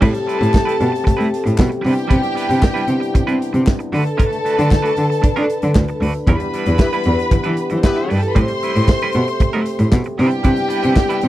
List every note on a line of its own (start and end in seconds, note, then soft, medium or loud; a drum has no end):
0.00 0.10 A2 loud
0.00 0.18 G3 medium
0.00 1.82 A3 medium
0.00 1.82 C4 medium
0.00 0.14 C4 medium
0.00 0.14 E4 medium
0.00 1.83 G4 medium
0.00 1.54 A4 loud
0.00 0.13 B4 medium
0.00 1.54 A5 loud
0.00 kick loud
0.00 crash medium
0.14 muted clean electric guitar stroke medium
0.14 closed hi-hat medium
0.27 0.39 G3 medium
0.27 0.39 C4 medium
0.27 0.38 E4 medium
0.27 0.37 B4 medium
0.27 closed hi-hat medium
0.39 0.49 A2 loud
0.39 0.51 C4 soft
0.39 0.52 E4 medium
0.39 0.52 B4 medium
0.39 closed hi-hat soft
0.52 muted clean electric guitar stroke soft
0.52 kick loud
0.52 snare loud
0.52 clap medium
0.65 0.77 G3 medium
0.65 0.77 C4 medium
0.65 0.78 E4 medium
0.65 0.78 B4 medium
0.65 closed hi-hat medium
0.78 0.89 B2 loud
0.78 muted clean electric guitar stroke soft
0.78 closed hi-hat medium
0.92 muted clean electric guitar stroke medium
0.92 closed hi-hat medium
1.04 1.11 A3 medium
1.04 muted clean electric guitar stroke medium
1.04 kick loud
1.04 closed hi-hat medium
1.17 1.29 G3 medium
1.17 1.27 A3 loud
1.17 1.30 C4 medium
1.17 1.30 E4 loud
1.17 1.30 B4 medium
1.17 closed hi-hat soft
1.34 closed hi-hat medium
1.44 1.54 A2 medium
1.44 muted clean electric guitar stroke soft
1.44 closed hi-hat soft
1.58 1.67 B2 loud
1.58 kick loud
1.58 snare loud
1.58 clap loud
1.69 muted clean electric guitar stroke medium
1.69 closed hi-hat soft
1.81 3.91 C3 medium
1.81 1.93 C3 loud
1.81 1.99 G3 medium
1.81 3.91 G3 medium
1.81 3.91 B3 medium
1.81 1.95 D4 medium
1.81 8.32 D4 medium
1.81 1.95 E4 medium
1.81 3.91 E4 medium
1.81 3.63 G4 loud
1.81 1.94 B4 medium
1.81 3.63 G5 loud
1.86 open hi-hat medium
1.95 muted clean electric guitar stroke soft
1.95 closed hi-hat soft
2.08 2.18 C3 loud
2.08 2.25 G3 medium
2.08 2.23 D4 medium
2.08 2.22 E4 medium
2.08 2.21 B4 medium
2.08 kick loud
2.08 closed hi-hat medium
2.22 muted clean electric guitar stroke soft
2.22 closed hi-hat soft
2.35 2.48 G3 medium
2.35 2.49 D4 medium
2.35 2.49 E4 medium
2.35 2.48 B4 medium
2.35 closed hi-hat medium
2.49 2.57 C3 medium
2.49 2.61 G3 medium
2.49 2.62 D4 medium
2.49 2.62 B4 medium
2.49 closed hi-hat medium
2.62 muted clean electric guitar stroke soft
2.62 kick loud
2.62 snare loud
2.62 clap medium
2.74 2.87 G3 medium
2.74 2.87 D4 medium
2.74 2.87 E4 medium
2.74 2.88 B4 medium
2.74 closed hi-hat medium
2.88 2.96 C3 medium
2.88 closed hi-hat medium
3.00 muted clean electric guitar stroke soft
3.00 closed hi-hat soft
3.14 3.19 C4 soft
3.14 muted clean electric guitar stroke soft
3.14 kick loud
3.14 closed hi-hat medium
3.27 3.38 G3 medium
3.27 3.35 C4 loud
3.27 3.39 D4 medium
3.27 3.39 E4 medium
3.27 3.40 B4 loud
3.27 closed hi-hat soft
3.42 closed hi-hat medium
3.53 3.62 C3 medium
3.53 muted clean electric guitar stroke medium
3.53 closed hi-hat soft
3.67 kick loud
3.67 snare loud
3.67 clap loud
3.79 muted clean electric guitar stroke soft
3.79 closed hi-hat soft
3.92 4.01 D3 medium
3.92 6.26 D3 medium
3.92 4.09 A3 medium
3.92 4.06 D4 loud
3.92 4.04 F#4 loud
3.92 6.26 A4 medium
3.92 5.99 A4 loud
3.92 6.26 B4 loud
3.92 4.04 B4 loud
3.92 5.98 A5 loud
3.92 snare soft
3.92 open hi-hat medium
4.06 muted clean electric guitar stroke soft
4.06 closed hi-hat soft
4.17 4.38 A3 medium
4.17 4.31 D4 loud
4.17 4.30 F#4 medium
4.17 4.30 B4 medium
4.17 kick loud
4.17 closed hi-hat medium
4.31 muted clean electric guitar stroke soft
4.31 closed hi-hat medium
4.45 4.58 A3 medium
4.45 4.57 D4 medium
4.45 4.57 F#4 medium
4.45 4.56 B4 medium
4.45 closed hi-hat medium
4.57 4.67 D3 loud
4.57 4.68 A3 medium
4.57 4.69 D4 medium
4.57 4.69 F#4 medium
4.57 4.69 B4 medium
4.57 closed hi-hat medium
4.69 muted clean electric guitar stroke soft
4.69 kick loud
4.69 snare loud
4.69 clap medium
4.82 4.95 A3 medium
4.82 4.96 D4 medium
4.82 4.96 F#4 medium
4.82 4.96 B4 medium
4.82 closed hi-hat medium
4.96 5.06 D3 medium
4.96 muted clean electric guitar stroke soft
4.96 closed hi-hat medium
5.10 muted clean electric guitar stroke medium
5.10 closed hi-hat medium
5.22 5.28 D4 medium
5.22 muted clean electric guitar stroke soft
5.22 kick loud
5.22 closed hi-hat medium
5.36 5.48 A3 medium
5.36 5.49 D4 medium
5.36 5.45 D4 loud
5.36 5.49 F#4 medium
5.36 5.50 B4 medium
5.36 closed hi-hat soft
5.50 closed hi-hat medium
5.62 5.71 D3 loud
5.62 muted clean electric guitar stroke soft
5.62 closed hi-hat soft
5.75 5.84 D2 medium
5.75 kick loud
5.75 snare loud
5.75 clap loud
5.88 muted clean electric guitar stroke soft
5.88 closed hi-hat soft
6.01 6.09 D2 medium
6.01 6.18 A3 medium
6.01 6.14 D4 medium
6.01 6.14 F#4 medium
6.01 6.14 B4 medium
6.01 open hi-hat medium
6.14 closed hi-hat soft
6.27 6.35 E2 loud
6.27 8.35 E3 medium
6.27 6.47 G3 medium
6.27 8.35 B3 medium
6.27 6.41 D4 medium
6.27 6.40 E4 medium
6.27 10.15 G4 medium
6.27 7.68 B4 loud
6.27 6.40 B4 medium
6.27 7.67 B5 loud
6.27 kick loud
6.27 closed hi-hat medium
6.40 muted clean electric guitar stroke soft
6.40 closed hi-hat medium
6.54 6.66 G3 medium
6.54 6.67 D4 medium
6.54 6.67 E4 medium
6.54 6.66 B4 medium
6.54 closed hi-hat medium
6.66 6.75 E2 loud
6.66 6.80 G3 medium
6.66 6.80 D4 medium
6.66 6.80 E4 medium
6.66 6.80 B4 medium
6.66 closed hi-hat medium
6.79 6.88 B3 medium
6.79 6.88 E4 medium
6.79 6.88 G4 medium
6.79 6.88 B4 medium
6.79 kick loud
6.79 snare loud
6.79 clap medium
6.93 7.05 G3 medium
6.93 7.06 D4 medium
6.93 7.06 E4 medium
6.93 7.06 B4 loud
6.93 closed hi-hat medium
7.04 7.14 E2 loud
7.04 closed hi-hat medium
7.19 muted clean electric guitar stroke soft
7.19 closed hi-hat soft
7.31 7.36 E3 medium
7.31 muted clean electric guitar stroke soft
7.31 kick loud
7.31 closed hi-hat medium
7.44 7.54 E3 loud
7.44 7.56 G3 medium
7.44 7.56 D4 medium
7.44 7.56 E4 medium
7.44 7.56 B4 medium
7.44 closed hi-hat soft
7.57 muted clean electric guitar stroke soft
7.57 closed hi-hat medium
7.70 7.79 E3 medium
7.70 muted clean electric guitar stroke soft
7.70 closed hi-hat soft
7.76 7.84 C4 medium
7.76 7.84 C5 medium
7.84 8.17 B3 loud
7.84 7.93 D4 medium
7.84 8.17 E4 medium
7.84 8.17 G4 loud
7.84 8.17 B4 loud
7.84 7.93 D5 medium
7.84 kick loud
7.84 snare loud
7.84 clap loud
7.94 8.02 E4 medium
7.94 8.02 E5 medium
7.94 muted clean electric guitar stroke medium
7.94 closed hi-hat soft
8.02 8.11 F#4 medium
8.02 8.11 F#5 medium
8.08 8.19 G2 medium
8.08 8.26 G3 medium
8.08 8.22 D4 medium
8.08 8.22 E4 medium
8.08 8.19 G4 medium
8.08 8.21 B4 medium
8.08 8.19 G5 medium
8.08 open hi-hat medium
8.20 8.28 A4 medium
8.20 8.28 A5 loud
8.20 closed hi-hat soft
8.28 8.37 B4 loud
8.28 8.37 B5 medium
8.35 8.44 A2 loud
8.35 8.52 G3 medium
8.35 10.17 A3 medium
8.35 8.49 C4 medium
8.35 10.17 C4 medium
8.35 8.49 E4 medium
8.35 8.48 B4 medium
8.35 9.90 C5 loud
8.35 9.90 C6 loud
8.35 kick loud
8.35 closed hi-hat medium
8.48 muted clean electric guitar stroke medium
8.48 closed hi-hat medium
8.63 8.75 G3 medium
8.63 8.75 C4 medium
8.63 8.74 E4 medium
8.63 8.73 B4 medium
8.63 closed hi-hat medium
8.76 8.84 A2 loud
8.76 8.87 G3 medium
8.76 8.88 C4 medium
8.76 closed hi-hat medium
8.88 muted clean electric guitar stroke soft
8.88 kick loud
8.88 snare loud
8.88 clap medium
9.01 9.14 G3 medium
9.01 9.15 C4 medium
9.01 9.15 E4 medium
9.01 9.15 B4 medium
9.01 closed hi-hat medium
9.13 9.23 B2 loud
9.13 closed hi-hat medium
9.27 muted clean electric guitar stroke soft
9.27 closed hi-hat soft
9.40 9.44 A3 soft
9.40 muted clean electric guitar stroke soft
9.40 kick loud
9.40 closed hi-hat medium
9.53 9.66 G3 medium
9.53 9.62 A3 loud
9.53 9.66 C4 medium
9.53 9.66 E4 medium
9.53 9.67 B4 medium
9.53 closed hi-hat soft
9.66 muted clean electric guitar stroke soft
9.66 closed hi-hat medium
9.79 9.88 A2 medium
9.79 muted clean electric guitar stroke soft
9.79 closed hi-hat soft
9.92 10.00 B2 loud
9.92 kick loud
9.92 snare loud
9.92 clap loud
10.04 muted clean electric guitar stroke soft
10.04 closed hi-hat soft
10.18 11.28 C3 medium
10.18 10.27 C3 loud
10.18 11.28 G3 medium
10.18 10.38 G3 medium
10.18 11.28 B3 medium
10.18 10.31 D4 medium
10.18 11.28 D4 medium
10.18 11.28 E4 medium
10.18 10.31 E4 loud
10.18 11.28 G4 loud
10.18 10.30 B4 medium
10.18 11.28 G5 loud
10.18 snare soft
10.18 open hi-hat medium
10.31 muted clean electric guitar stroke soft
10.31 closed hi-hat soft
10.43 10.52 C3 loud
10.43 10.60 G3 medium
10.43 10.55 D4 medium
10.43 10.55 E4 medium
10.43 10.54 B4 medium
10.43 kick loud
10.43 closed hi-hat medium
10.55 muted clean electric guitar stroke medium
10.55 closed hi-hat medium
10.68 10.82 G3 medium
10.68 10.82 D4 medium
10.68 10.82 E4 medium
10.68 10.81 B4 medium
10.68 closed hi-hat medium
10.83 10.92 C3 medium
10.83 10.94 G3 medium
10.83 10.95 D4 medium
10.83 10.95 E4 medium
10.83 10.96 B4 medium
10.83 closed hi-hat medium
10.95 muted clean electric guitar stroke soft
10.95 kick loud
10.95 snare loud
10.95 clap medium
11.09 11.21 G3 medium
11.09 11.21 D4 medium
11.09 11.21 E4 medium
11.09 11.22 B4 medium
11.09 closed hi-hat medium
11.21 11.28 C3 loud
11.21 closed hi-hat medium